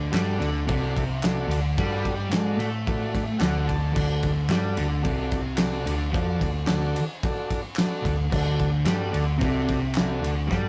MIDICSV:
0, 0, Header, 1, 5, 480
1, 0, Start_track
1, 0, Key_signature, 2, "major"
1, 0, Tempo, 546448
1, 1549, Time_signature, 4, 2, 24, 8
1, 9387, End_track
2, 0, Start_track
2, 0, Title_t, "Transistor combo organ"
2, 0, Program_c, 0, 18
2, 100, Note_on_c, 0, 66, 97
2, 108, Note_on_c, 0, 74, 91
2, 115, Note_on_c, 0, 69, 81
2, 433, Note_off_c, 0, 66, 0
2, 437, Note_off_c, 0, 74, 0
2, 441, Note_off_c, 0, 69, 0
2, 585, Note_on_c, 0, 69, 72
2, 590, Note_on_c, 0, 66, 77
2, 599, Note_on_c, 0, 74, 85
2, 916, Note_off_c, 0, 69, 0
2, 918, Note_off_c, 0, 66, 0
2, 923, Note_off_c, 0, 74, 0
2, 1084, Note_on_c, 0, 66, 93
2, 1086, Note_on_c, 0, 69, 87
2, 1111, Note_on_c, 0, 74, 103
2, 1405, Note_off_c, 0, 66, 0
2, 1406, Note_off_c, 0, 69, 0
2, 1418, Note_off_c, 0, 74, 0
2, 1562, Note_on_c, 0, 69, 79
2, 1564, Note_on_c, 0, 66, 80
2, 1569, Note_on_c, 0, 74, 93
2, 1884, Note_off_c, 0, 69, 0
2, 1885, Note_off_c, 0, 66, 0
2, 1887, Note_off_c, 0, 74, 0
2, 2045, Note_on_c, 0, 66, 98
2, 2052, Note_on_c, 0, 74, 91
2, 2060, Note_on_c, 0, 69, 84
2, 2365, Note_off_c, 0, 66, 0
2, 2369, Note_off_c, 0, 74, 0
2, 2373, Note_off_c, 0, 69, 0
2, 2523, Note_on_c, 0, 66, 81
2, 2536, Note_on_c, 0, 69, 70
2, 2537, Note_on_c, 0, 74, 90
2, 2845, Note_off_c, 0, 66, 0
2, 2851, Note_off_c, 0, 69, 0
2, 2852, Note_off_c, 0, 74, 0
2, 2973, Note_on_c, 0, 66, 79
2, 2977, Note_on_c, 0, 78, 71
2, 2980, Note_on_c, 0, 69, 83
2, 2984, Note_on_c, 0, 74, 97
2, 3207, Note_off_c, 0, 78, 0
2, 3227, Note_on_c, 0, 81, 79
2, 3310, Note_off_c, 0, 66, 0
2, 3314, Note_off_c, 0, 69, 0
2, 3316, Note_off_c, 0, 74, 0
2, 3448, Note_on_c, 0, 66, 83
2, 3452, Note_off_c, 0, 81, 0
2, 3456, Note_on_c, 0, 69, 71
2, 3470, Note_on_c, 0, 74, 85
2, 3788, Note_off_c, 0, 66, 0
2, 3792, Note_off_c, 0, 69, 0
2, 3799, Note_off_c, 0, 74, 0
2, 3952, Note_on_c, 0, 66, 95
2, 3958, Note_on_c, 0, 69, 79
2, 3966, Note_on_c, 0, 74, 94
2, 4281, Note_off_c, 0, 66, 0
2, 4284, Note_off_c, 0, 69, 0
2, 4287, Note_off_c, 0, 74, 0
2, 4412, Note_on_c, 0, 66, 77
2, 4413, Note_on_c, 0, 69, 70
2, 4423, Note_on_c, 0, 74, 83
2, 4751, Note_off_c, 0, 66, 0
2, 4751, Note_off_c, 0, 69, 0
2, 4757, Note_off_c, 0, 74, 0
2, 4877, Note_on_c, 0, 66, 85
2, 4892, Note_on_c, 0, 69, 72
2, 4906, Note_on_c, 0, 74, 95
2, 5224, Note_off_c, 0, 66, 0
2, 5231, Note_off_c, 0, 69, 0
2, 5238, Note_off_c, 0, 74, 0
2, 5375, Note_on_c, 0, 66, 78
2, 5395, Note_on_c, 0, 69, 80
2, 5398, Note_on_c, 0, 74, 88
2, 5713, Note_off_c, 0, 66, 0
2, 5723, Note_off_c, 0, 69, 0
2, 5724, Note_off_c, 0, 74, 0
2, 5848, Note_on_c, 0, 66, 99
2, 5856, Note_on_c, 0, 74, 108
2, 5858, Note_on_c, 0, 69, 89
2, 6190, Note_off_c, 0, 66, 0
2, 6193, Note_off_c, 0, 74, 0
2, 6194, Note_off_c, 0, 69, 0
2, 6352, Note_on_c, 0, 66, 84
2, 6365, Note_on_c, 0, 69, 68
2, 6372, Note_on_c, 0, 74, 92
2, 6681, Note_off_c, 0, 66, 0
2, 6688, Note_off_c, 0, 69, 0
2, 6691, Note_off_c, 0, 74, 0
2, 6837, Note_on_c, 0, 66, 80
2, 6855, Note_on_c, 0, 69, 78
2, 6863, Note_on_c, 0, 74, 92
2, 7163, Note_off_c, 0, 66, 0
2, 7172, Note_off_c, 0, 69, 0
2, 7176, Note_off_c, 0, 74, 0
2, 7304, Note_on_c, 0, 66, 80
2, 7318, Note_on_c, 0, 69, 81
2, 7337, Note_on_c, 0, 74, 96
2, 7637, Note_off_c, 0, 66, 0
2, 7643, Note_off_c, 0, 69, 0
2, 7653, Note_off_c, 0, 74, 0
2, 7796, Note_on_c, 0, 69, 86
2, 7798, Note_on_c, 0, 66, 94
2, 7818, Note_on_c, 0, 74, 98
2, 8122, Note_off_c, 0, 69, 0
2, 8123, Note_off_c, 0, 66, 0
2, 8133, Note_off_c, 0, 74, 0
2, 8290, Note_on_c, 0, 66, 81
2, 8296, Note_on_c, 0, 69, 76
2, 8297, Note_on_c, 0, 74, 92
2, 8608, Note_off_c, 0, 66, 0
2, 8611, Note_off_c, 0, 69, 0
2, 8612, Note_off_c, 0, 74, 0
2, 8765, Note_on_c, 0, 66, 90
2, 8765, Note_on_c, 0, 74, 92
2, 8768, Note_on_c, 0, 69, 82
2, 9085, Note_off_c, 0, 66, 0
2, 9085, Note_off_c, 0, 74, 0
2, 9087, Note_off_c, 0, 69, 0
2, 9241, Note_on_c, 0, 66, 84
2, 9259, Note_on_c, 0, 69, 78
2, 9267, Note_on_c, 0, 74, 89
2, 9387, Note_off_c, 0, 66, 0
2, 9387, Note_off_c, 0, 69, 0
2, 9387, Note_off_c, 0, 74, 0
2, 9387, End_track
3, 0, Start_track
3, 0, Title_t, "Distorted electric guitar"
3, 0, Program_c, 1, 30
3, 0, Note_on_c, 1, 50, 116
3, 103, Note_on_c, 1, 55, 108
3, 104, Note_off_c, 1, 50, 0
3, 340, Note_off_c, 1, 55, 0
3, 340, Note_on_c, 1, 50, 106
3, 578, Note_off_c, 1, 50, 0
3, 590, Note_on_c, 1, 48, 102
3, 1302, Note_off_c, 1, 48, 0
3, 1309, Note_on_c, 1, 50, 106
3, 1542, Note_off_c, 1, 50, 0
3, 1556, Note_on_c, 1, 55, 96
3, 2026, Note_off_c, 1, 55, 0
3, 2041, Note_on_c, 1, 56, 114
3, 2268, Note_off_c, 1, 56, 0
3, 2274, Note_on_c, 1, 57, 109
3, 2986, Note_off_c, 1, 57, 0
3, 3001, Note_on_c, 1, 50, 114
3, 3441, Note_off_c, 1, 50, 0
3, 3452, Note_on_c, 1, 50, 99
3, 3935, Note_off_c, 1, 50, 0
3, 3947, Note_on_c, 1, 55, 107
3, 4183, Note_off_c, 1, 55, 0
3, 4191, Note_on_c, 1, 50, 106
3, 4417, Note_off_c, 1, 50, 0
3, 4420, Note_on_c, 1, 48, 102
3, 5140, Note_off_c, 1, 48, 0
3, 5148, Note_on_c, 1, 50, 98
3, 5367, Note_off_c, 1, 50, 0
3, 5371, Note_on_c, 1, 53, 102
3, 5616, Note_off_c, 1, 53, 0
3, 5629, Note_on_c, 1, 50, 69
3, 5824, Note_off_c, 1, 50, 0
3, 5862, Note_on_c, 1, 50, 115
3, 6101, Note_off_c, 1, 50, 0
3, 7043, Note_on_c, 1, 50, 80
3, 7251, Note_off_c, 1, 50, 0
3, 7289, Note_on_c, 1, 50, 107
3, 7774, Note_off_c, 1, 50, 0
3, 7774, Note_on_c, 1, 55, 112
3, 8008, Note_on_c, 1, 50, 107
3, 8016, Note_off_c, 1, 55, 0
3, 8235, Note_off_c, 1, 50, 0
3, 8239, Note_on_c, 1, 48, 100
3, 8966, Note_off_c, 1, 48, 0
3, 8979, Note_on_c, 1, 50, 104
3, 9200, Note_on_c, 1, 55, 103
3, 9217, Note_off_c, 1, 50, 0
3, 9387, Note_off_c, 1, 55, 0
3, 9387, End_track
4, 0, Start_track
4, 0, Title_t, "Picked electric bass"
4, 0, Program_c, 2, 34
4, 111, Note_on_c, 2, 43, 90
4, 334, Note_off_c, 2, 43, 0
4, 353, Note_on_c, 2, 38, 106
4, 575, Note_off_c, 2, 38, 0
4, 603, Note_on_c, 2, 36, 104
4, 1281, Note_off_c, 2, 36, 0
4, 1291, Note_on_c, 2, 38, 94
4, 1523, Note_off_c, 2, 38, 0
4, 1558, Note_on_c, 2, 43, 93
4, 2000, Note_off_c, 2, 43, 0
4, 2017, Note_on_c, 2, 44, 92
4, 2246, Note_off_c, 2, 44, 0
4, 2256, Note_on_c, 2, 45, 97
4, 2948, Note_off_c, 2, 45, 0
4, 2989, Note_on_c, 2, 38, 92
4, 3437, Note_off_c, 2, 38, 0
4, 3474, Note_on_c, 2, 38, 92
4, 3920, Note_off_c, 2, 38, 0
4, 3940, Note_on_c, 2, 43, 102
4, 4169, Note_off_c, 2, 43, 0
4, 4192, Note_on_c, 2, 38, 96
4, 4416, Note_off_c, 2, 38, 0
4, 4436, Note_on_c, 2, 36, 102
4, 5120, Note_off_c, 2, 36, 0
4, 5147, Note_on_c, 2, 38, 103
4, 5374, Note_off_c, 2, 38, 0
4, 5389, Note_on_c, 2, 41, 85
4, 5615, Note_off_c, 2, 41, 0
4, 5628, Note_on_c, 2, 38, 88
4, 5854, Note_off_c, 2, 38, 0
4, 5863, Note_on_c, 2, 38, 97
4, 6092, Note_off_c, 2, 38, 0
4, 7061, Note_on_c, 2, 38, 88
4, 7290, Note_off_c, 2, 38, 0
4, 7307, Note_on_c, 2, 38, 100
4, 7756, Note_off_c, 2, 38, 0
4, 7775, Note_on_c, 2, 43, 106
4, 8006, Note_off_c, 2, 43, 0
4, 8023, Note_on_c, 2, 38, 96
4, 8250, Note_off_c, 2, 38, 0
4, 8266, Note_on_c, 2, 36, 94
4, 8952, Note_off_c, 2, 36, 0
4, 8974, Note_on_c, 2, 38, 92
4, 9204, Note_off_c, 2, 38, 0
4, 9220, Note_on_c, 2, 43, 92
4, 9387, Note_off_c, 2, 43, 0
4, 9387, End_track
5, 0, Start_track
5, 0, Title_t, "Drums"
5, 120, Note_on_c, 9, 39, 99
5, 126, Note_on_c, 9, 38, 96
5, 126, Note_on_c, 9, 51, 97
5, 208, Note_off_c, 9, 39, 0
5, 214, Note_off_c, 9, 38, 0
5, 214, Note_off_c, 9, 51, 0
5, 367, Note_on_c, 9, 51, 70
5, 455, Note_off_c, 9, 51, 0
5, 602, Note_on_c, 9, 51, 107
5, 606, Note_on_c, 9, 36, 124
5, 690, Note_off_c, 9, 51, 0
5, 694, Note_off_c, 9, 36, 0
5, 848, Note_on_c, 9, 36, 87
5, 853, Note_on_c, 9, 51, 75
5, 936, Note_off_c, 9, 36, 0
5, 941, Note_off_c, 9, 51, 0
5, 1081, Note_on_c, 9, 39, 94
5, 1090, Note_on_c, 9, 38, 109
5, 1090, Note_on_c, 9, 51, 96
5, 1169, Note_off_c, 9, 39, 0
5, 1178, Note_off_c, 9, 38, 0
5, 1178, Note_off_c, 9, 51, 0
5, 1328, Note_on_c, 9, 51, 82
5, 1416, Note_off_c, 9, 51, 0
5, 1565, Note_on_c, 9, 36, 119
5, 1567, Note_on_c, 9, 51, 108
5, 1653, Note_off_c, 9, 36, 0
5, 1655, Note_off_c, 9, 51, 0
5, 1802, Note_on_c, 9, 51, 66
5, 1804, Note_on_c, 9, 36, 83
5, 1890, Note_off_c, 9, 51, 0
5, 1891, Note_off_c, 9, 36, 0
5, 2039, Note_on_c, 9, 39, 93
5, 2044, Note_on_c, 9, 38, 106
5, 2044, Note_on_c, 9, 51, 85
5, 2127, Note_off_c, 9, 39, 0
5, 2132, Note_off_c, 9, 38, 0
5, 2132, Note_off_c, 9, 51, 0
5, 2283, Note_on_c, 9, 51, 70
5, 2371, Note_off_c, 9, 51, 0
5, 2524, Note_on_c, 9, 36, 116
5, 2526, Note_on_c, 9, 51, 93
5, 2611, Note_off_c, 9, 36, 0
5, 2614, Note_off_c, 9, 51, 0
5, 2764, Note_on_c, 9, 36, 85
5, 2768, Note_on_c, 9, 51, 71
5, 2851, Note_off_c, 9, 36, 0
5, 2856, Note_off_c, 9, 51, 0
5, 2991, Note_on_c, 9, 39, 90
5, 3001, Note_on_c, 9, 38, 107
5, 3001, Note_on_c, 9, 51, 97
5, 3079, Note_off_c, 9, 39, 0
5, 3089, Note_off_c, 9, 38, 0
5, 3089, Note_off_c, 9, 51, 0
5, 3241, Note_on_c, 9, 36, 74
5, 3243, Note_on_c, 9, 51, 71
5, 3329, Note_off_c, 9, 36, 0
5, 3331, Note_off_c, 9, 51, 0
5, 3477, Note_on_c, 9, 49, 100
5, 3480, Note_on_c, 9, 36, 109
5, 3565, Note_off_c, 9, 49, 0
5, 3568, Note_off_c, 9, 36, 0
5, 3714, Note_on_c, 9, 51, 70
5, 3719, Note_on_c, 9, 36, 83
5, 3801, Note_off_c, 9, 51, 0
5, 3807, Note_off_c, 9, 36, 0
5, 3949, Note_on_c, 9, 39, 92
5, 3963, Note_on_c, 9, 38, 108
5, 3963, Note_on_c, 9, 51, 85
5, 4037, Note_off_c, 9, 39, 0
5, 4050, Note_off_c, 9, 38, 0
5, 4050, Note_off_c, 9, 51, 0
5, 4191, Note_on_c, 9, 51, 76
5, 4279, Note_off_c, 9, 51, 0
5, 4433, Note_on_c, 9, 51, 97
5, 4436, Note_on_c, 9, 36, 117
5, 4520, Note_off_c, 9, 51, 0
5, 4524, Note_off_c, 9, 36, 0
5, 4670, Note_on_c, 9, 51, 75
5, 4673, Note_on_c, 9, 36, 81
5, 4757, Note_off_c, 9, 51, 0
5, 4761, Note_off_c, 9, 36, 0
5, 4898, Note_on_c, 9, 39, 107
5, 4901, Note_on_c, 9, 38, 110
5, 4901, Note_on_c, 9, 51, 101
5, 4985, Note_off_c, 9, 39, 0
5, 4989, Note_off_c, 9, 38, 0
5, 4989, Note_off_c, 9, 51, 0
5, 5156, Note_on_c, 9, 51, 80
5, 5243, Note_off_c, 9, 51, 0
5, 5397, Note_on_c, 9, 36, 121
5, 5403, Note_on_c, 9, 51, 95
5, 5485, Note_off_c, 9, 36, 0
5, 5491, Note_off_c, 9, 51, 0
5, 5633, Note_on_c, 9, 36, 87
5, 5634, Note_on_c, 9, 51, 81
5, 5720, Note_off_c, 9, 36, 0
5, 5722, Note_off_c, 9, 51, 0
5, 5861, Note_on_c, 9, 39, 96
5, 5862, Note_on_c, 9, 38, 99
5, 5862, Note_on_c, 9, 51, 94
5, 5949, Note_off_c, 9, 39, 0
5, 5950, Note_off_c, 9, 38, 0
5, 5950, Note_off_c, 9, 51, 0
5, 6114, Note_on_c, 9, 51, 79
5, 6202, Note_off_c, 9, 51, 0
5, 6354, Note_on_c, 9, 36, 125
5, 6355, Note_on_c, 9, 51, 93
5, 6442, Note_off_c, 9, 36, 0
5, 6443, Note_off_c, 9, 51, 0
5, 6593, Note_on_c, 9, 36, 89
5, 6594, Note_on_c, 9, 51, 73
5, 6680, Note_off_c, 9, 36, 0
5, 6681, Note_off_c, 9, 51, 0
5, 6814, Note_on_c, 9, 39, 100
5, 6837, Note_on_c, 9, 38, 114
5, 6837, Note_on_c, 9, 51, 105
5, 6902, Note_off_c, 9, 39, 0
5, 6925, Note_off_c, 9, 38, 0
5, 6925, Note_off_c, 9, 51, 0
5, 7072, Note_on_c, 9, 36, 78
5, 7077, Note_on_c, 9, 51, 72
5, 7160, Note_off_c, 9, 36, 0
5, 7165, Note_off_c, 9, 51, 0
5, 7311, Note_on_c, 9, 49, 97
5, 7312, Note_on_c, 9, 36, 112
5, 7399, Note_off_c, 9, 36, 0
5, 7399, Note_off_c, 9, 49, 0
5, 7549, Note_on_c, 9, 51, 67
5, 7551, Note_on_c, 9, 36, 83
5, 7637, Note_off_c, 9, 51, 0
5, 7639, Note_off_c, 9, 36, 0
5, 7785, Note_on_c, 9, 39, 93
5, 7787, Note_on_c, 9, 38, 105
5, 7787, Note_on_c, 9, 51, 90
5, 7873, Note_off_c, 9, 39, 0
5, 7875, Note_off_c, 9, 38, 0
5, 7875, Note_off_c, 9, 51, 0
5, 8029, Note_on_c, 9, 51, 75
5, 8117, Note_off_c, 9, 51, 0
5, 8265, Note_on_c, 9, 51, 96
5, 8269, Note_on_c, 9, 36, 113
5, 8353, Note_off_c, 9, 51, 0
5, 8357, Note_off_c, 9, 36, 0
5, 8509, Note_on_c, 9, 36, 88
5, 8511, Note_on_c, 9, 51, 73
5, 8597, Note_off_c, 9, 36, 0
5, 8599, Note_off_c, 9, 51, 0
5, 8735, Note_on_c, 9, 39, 88
5, 8758, Note_on_c, 9, 38, 122
5, 8758, Note_on_c, 9, 51, 92
5, 8822, Note_off_c, 9, 39, 0
5, 8846, Note_off_c, 9, 38, 0
5, 8846, Note_off_c, 9, 51, 0
5, 8997, Note_on_c, 9, 51, 69
5, 9085, Note_off_c, 9, 51, 0
5, 9230, Note_on_c, 9, 36, 109
5, 9235, Note_on_c, 9, 38, 68
5, 9318, Note_off_c, 9, 36, 0
5, 9323, Note_off_c, 9, 38, 0
5, 9387, End_track
0, 0, End_of_file